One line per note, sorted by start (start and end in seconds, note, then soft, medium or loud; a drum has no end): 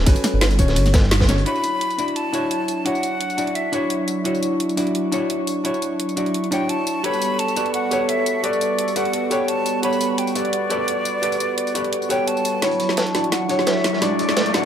0.06 0.15 G1 loud
0.06 0.57 C#4 medium
0.06 0.57 F#4 medium
0.06 0.57 A4 medium
0.06 0.58 B4 loud
0.06 kick loud
0.06 closed hi-hat loud
0.06 ride medium
0.16 closed hi-hat soft
0.16 tambourine soft
0.24 snare medium
0.24 closed hi-hat medium
0.24 tambourine medium
0.33 0.60 G1 medium
0.41 snare loud
0.41 closed hi-hat medium
0.41 closed hi-hat loud
0.41 ride medium
0.50 closed hi-hat soft
0.50 tambourine soft
0.58 0.78 D1 loud
0.58 0.92 C#4 medium
0.58 0.92 F#4 medium
0.58 0.92 A4 medium
0.58 0.93 C#5 loud
0.58 kick medium
0.58 closed hi-hat medium
0.58 tambourine medium
0.68 snare medium
0.68 closed hi-hat soft
0.76 1.45 G1 loud
0.76 closed hi-hat medium
0.76 closed hi-hat loud
0.76 ride medium
0.86 snare soft
0.86 closed hi-hat soft
0.86 tambourine soft
0.94 kick loud
0.94 snare loud
0.94 closed hi-hat medium
0.94 tambourine medium
1.03 snare medium
1.11 snare loud
1.11 closed hi-hat medium
1.11 closed hi-hat loud
1.11 ride medium
1.20 kick medium
1.20 snare medium
1.20 closed hi-hat medium
1.28 1.44 C#4 medium
1.28 1.44 F#4 medium
1.28 1.44 A4 medium
1.28 1.45 C#5 medium
1.28 snare soft
1.28 closed hi-hat medium
1.28 tambourine medium
1.38 closed hi-hat medium
1.45 7.00 F#3 medium
1.45 1.96 D4 medium
1.45 7.00 D4 medium
1.45 1.96 E4 medium
1.45 7.00 E4 medium
1.45 1.97 F#4 medium
1.45 1.97 C#5 medium
1.45 2.17 B5 loud
1.45 12.59 C#6 medium
1.45 closed hi-hat medium
1.55 tambourine soft
1.64 closed hi-hat medium
1.64 tambourine medium
1.81 closed hi-hat medium
1.90 closed hi-hat soft
1.90 tambourine soft
1.98 2.32 D4 medium
1.98 2.32 E4 medium
1.98 2.32 F#4 medium
1.98 2.32 D5 medium
1.98 closed hi-hat medium
1.98 tambourine medium
2.08 closed hi-hat soft
2.16 2.87 A5 loud
2.16 closed hi-hat medium
2.33 2.83 D4 medium
2.33 2.84 E4 medium
2.33 2.84 F#4 medium
2.33 2.84 C#5 loud
2.33 closed hi-hat medium
2.33 tambourine medium
2.51 closed hi-hat medium
2.68 closed hi-hat medium
2.68 tambourine medium
2.85 3.36 D4 medium
2.85 3.36 E4 medium
2.85 3.36 F#4 medium
2.85 3.37 C#5 medium
2.85 3.57 F#5 loud
2.85 closed hi-hat medium
2.95 tambourine soft
3.03 closed hi-hat medium
3.03 tambourine medium
3.21 closed hi-hat medium
3.30 closed hi-hat soft
3.30 tambourine soft
3.37 3.71 D4 medium
3.37 3.71 E4 medium
3.37 3.71 F#4 medium
3.37 3.72 D5 medium
3.37 closed hi-hat medium
3.37 tambourine medium
3.47 closed hi-hat soft
3.55 4.08 E5 medium
3.55 closed hi-hat medium
3.72 4.23 D4 medium
3.72 4.23 E4 medium
3.72 4.24 F#4 medium
3.72 4.24 C#5 loud
3.72 closed hi-hat medium
3.72 tambourine medium
3.90 closed hi-hat medium
4.08 closed hi-hat medium
4.08 tambourine medium
4.24 4.75 D4 medium
4.24 4.75 E4 medium
4.24 4.76 F#4 medium
4.24 4.76 C#5 medium
4.24 closed hi-hat medium
4.35 tambourine soft
4.43 closed hi-hat medium
4.43 tambourine medium
4.60 closed hi-hat medium
4.69 closed hi-hat soft
4.69 tambourine soft
4.77 5.10 D4 medium
4.77 5.11 E4 medium
4.77 5.11 F#4 medium
4.77 5.11 D5 medium
4.77 closed hi-hat medium
4.77 tambourine medium
4.87 closed hi-hat soft
4.95 closed hi-hat medium
5.12 5.62 D4 medium
5.12 5.63 E4 medium
5.12 5.63 F#4 medium
5.12 5.63 C#5 loud
5.12 closed hi-hat medium
5.12 tambourine medium
5.30 closed hi-hat medium
5.47 closed hi-hat medium
5.47 tambourine medium
5.64 6.15 D4 medium
5.64 6.15 E4 medium
5.64 6.15 F#4 medium
5.64 6.16 C#5 medium
5.64 closed hi-hat medium
5.74 tambourine soft
5.82 closed hi-hat medium
5.82 tambourine medium
6.00 closed hi-hat medium
6.09 closed hi-hat soft
6.09 tambourine soft
6.16 6.50 D4 medium
6.16 6.50 E4 medium
6.16 6.50 F#4 medium
6.16 6.51 D5 medium
6.16 closed hi-hat medium
6.16 tambourine medium
6.26 closed hi-hat soft
6.34 closed hi-hat medium
6.44 closed hi-hat soft
6.51 7.02 D4 loud
6.51 7.02 E4 medium
6.51 7.02 F#4 medium
6.51 7.03 C#5 loud
6.51 6.71 G5 medium
6.51 closed hi-hat medium
6.51 tambourine medium
6.69 7.06 A5 loud
6.69 closed hi-hat medium
6.87 closed hi-hat medium
6.87 tambourine medium
7.03 12.58 G3 medium
7.03 12.58 B3 medium
7.03 7.54 F#4 medium
7.03 7.54 G4 medium
7.03 7.55 A4 medium
7.03 9.81 A4 medium
7.03 7.55 B4 medium
7.03 7.55 C#5 medium
7.03 12.58 F#5 medium
7.03 7.41 B5 loud
7.03 closed hi-hat medium
7.14 tambourine soft
7.22 closed hi-hat medium
7.22 tambourine medium
7.39 7.73 A5 loud
7.39 closed hi-hat medium
7.48 closed hi-hat soft
7.48 tambourine soft
7.56 7.89 F#4 medium
7.56 7.90 G4 medium
7.56 7.90 A4 medium
7.56 7.90 B4 medium
7.56 7.90 D5 medium
7.56 closed hi-hat medium
7.56 tambourine medium
7.66 closed hi-hat soft
7.74 8.11 F#5 loud
7.74 closed hi-hat medium
7.91 8.41 F#4 medium
7.91 8.42 G4 medium
7.91 8.42 A4 medium
7.91 8.42 B4 medium
7.91 8.42 C#5 loud
7.91 closed hi-hat medium
7.91 tambourine medium
8.09 8.45 E5 loud
8.09 closed hi-hat medium
8.26 closed hi-hat medium
8.26 tambourine medium
8.43 8.94 F#4 medium
8.43 8.94 G4 medium
8.43 8.94 A4 medium
8.43 8.95 B4 medium
8.43 8.98 D5 loud
8.43 8.95 D5 medium
8.43 closed hi-hat medium
8.53 tambourine soft
8.61 closed hi-hat medium
8.61 tambourine medium
8.79 closed hi-hat medium
8.88 closed hi-hat soft
8.88 tambourine soft
8.96 9.29 F#4 medium
8.96 9.29 G4 medium
8.96 9.30 A4 medium
8.96 9.30 B4 medium
8.96 9.30 D5 medium
8.96 9.33 F#5 loud
8.96 closed hi-hat medium
8.96 tambourine medium
9.05 closed hi-hat soft
9.13 closed hi-hat medium
9.30 9.81 F#4 medium
9.30 9.81 G4 medium
9.30 9.81 A4 medium
9.30 9.82 B4 medium
9.30 9.82 C#5 loud
9.30 9.50 G5 medium
9.30 closed hi-hat medium
9.30 tambourine medium
9.48 9.83 A5 loud
9.48 closed hi-hat medium
9.66 closed hi-hat medium
9.66 tambourine medium
9.82 10.33 F#4 medium
9.82 10.34 G4 medium
9.82 10.34 A4 medium
9.82 12.60 B4 medium
9.82 10.34 B4 medium
9.82 10.34 C#5 medium
9.82 10.20 B5 loud
9.82 closed hi-hat medium
9.93 tambourine soft
10.01 closed hi-hat medium
10.01 tambourine medium
10.18 10.37 G5 medium
10.18 closed hi-hat medium
10.27 closed hi-hat soft
10.27 tambourine soft
10.35 10.68 F#4 medium
10.35 10.69 G4 medium
10.35 10.69 A4 medium
10.35 10.69 B4 medium
10.35 11.81 D5 loud
10.35 10.69 D5 medium
10.35 closed hi-hat medium
10.35 tambourine medium
10.45 closed hi-hat soft
10.53 closed hi-hat medium
10.70 11.20 F#4 loud
10.70 11.21 G4 medium
10.70 11.21 A4 medium
10.70 11.21 B4 medium
10.70 11.21 D5 loud
10.70 closed hi-hat medium
10.70 tambourine medium
10.88 closed hi-hat medium
11.05 closed hi-hat medium
11.05 tambourine medium
11.22 11.73 F#4 medium
11.22 11.73 G4 medium
11.22 11.73 A4 medium
11.22 11.74 B4 medium
11.22 11.74 D5 medium
11.22 closed hi-hat loud
11.32 closed hi-hat soft
11.32 tambourine soft
11.40 closed hi-hat medium
11.40 tambourine medium
11.58 closed hi-hat medium
11.67 closed hi-hat soft
11.67 tambourine soft
11.74 12.08 F#4 medium
11.74 12.08 G4 medium
11.74 12.08 A4 medium
11.74 12.09 B4 medium
11.74 12.09 D5 medium
11.74 closed hi-hat medium
11.74 tambourine medium
11.84 closed hi-hat soft
11.93 closed hi-hat medium
12.02 tambourine soft
12.09 12.60 F#4 loud
12.09 12.60 G4 medium
12.09 12.60 A4 medium
12.09 12.61 B4 medium
12.09 12.61 C#5 loud
12.09 12.29 G5 loud
12.09 closed hi-hat medium
12.09 tambourine medium
12.27 12.64 A5 loud
12.27 closed hi-hat medium
12.37 tambourine soft
12.45 closed hi-hat medium
12.45 tambourine medium
12.61 14.65 F#3 medium
12.61 13.12 D4 medium
12.61 14.65 D4 medium
12.61 13.13 E4 medium
12.61 14.65 E4 medium
12.61 13.13 F#4 medium
12.61 13.13 C#5 medium
12.61 12.99 B5 loud
12.61 14.65 C#6 medium
12.61 snare soft
12.61 closed hi-hat loud
12.61 closed hi-hat medium
12.61 riser medium
12.71 closed hi-hat soft
12.80 closed hi-hat medium
12.89 snare soft
12.97 13.33 A5 loud
12.97 snare loud
12.97 closed hi-hat medium
13.07 closed hi-hat soft
13.14 13.47 D4 medium
13.14 13.48 E4 medium
13.14 13.48 F#4 medium
13.14 13.48 D5 medium
13.14 snare medium
13.14 closed hi-hat medium
13.24 closed hi-hat soft
13.32 13.68 F#5 loud
13.32 snare medium
13.32 closed hi-hat medium
13.49 14.00 D4 medium
13.49 14.00 E4 medium
13.49 14.00 F#4 medium
13.49 14.01 C#5 loud
13.49 closed hi-hat medium
13.59 snare soft
13.66 14.03 E5 loud
13.66 snare loud
13.66 closed hi-hat medium
13.76 snare soft
13.84 snare medium
13.84 closed hi-hat medium
13.93 snare soft
14.01 14.52 D4 medium
14.01 14.52 E4 medium
14.01 14.53 F#4 medium
14.01 14.55 D5 loud
14.01 14.53 D5 medium
14.01 snare medium
14.01 closed hi-hat medium
14.19 closed hi-hat medium
14.29 snare medium
14.37 snare loud
14.37 closed hi-hat medium
14.46 closed hi-hat soft
14.54 14.65 D4 medium
14.54 14.65 E4 medium
14.54 14.65 F#4 medium
14.54 14.65 D5 medium
14.54 14.65 F#5 loud
14.54 snare medium
14.54 closed hi-hat medium